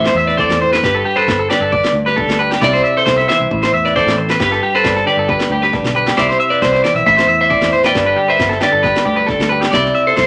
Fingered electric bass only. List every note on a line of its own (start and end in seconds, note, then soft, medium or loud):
0.00 0.13 A1 loud
0.14 0.44 E2 medium
0.49 0.78 E2 medium
0.83 1.02 G1 medium
1.28 1.47 G1 medium
1.60 1.80 G1 medium
1.93 2.23 D2 loud
2.27 2.56 D2 medium
2.61 2.81 C2 loud
3.06 3.25 C2 medium
3.40 3.49 C2 medium
3.51 3.70 A1 loud
3.73 4.02 E2 medium
4.06 4.35 A1 medium
4.40 4.59 G1 medium
4.84 5.03 G1 medium
5.17 5.37 G1 medium
5.50 5.79 D2 medium
5.83 6.12 B1 medium
6.17 6.37 C2 medium
6.62 6.81 C2 medium
6.94 7.04 B1 medium
7.06 7.26 A1 loud
7.26 7.57 E2 loud
7.61 7.90 E2 medium
7.95 8.14 G1 medium
8.39 8.59 G1 medium
8.73 8.92 G1 medium
9.06 9.36 D2 medium
9.39 9.68 D2 medium
9.73 9.92 C2 medium
10.17 10.27 C2 medium